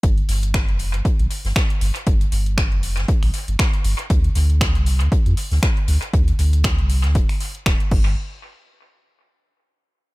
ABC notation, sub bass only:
X:1
M:4/4
L:1/16
Q:"Swing 16ths" 1/4=118
K:Gm
V:1 name="Sub bass" clef=bass
G,,, z G,,,3 F,,,2 G,,, z B,,, z G,,, z2 G,,, z | G,,, z G,,,3 F,,,2 G,,, z B,,, z G,,, z2 G,,, z | D,, z D,,3 C,,2 D,, z F,, z D,, z2 D,, z | D,, z D,,3 C,,2 D,, D,,, z3 D,,, z G,,,2 |
z16 |]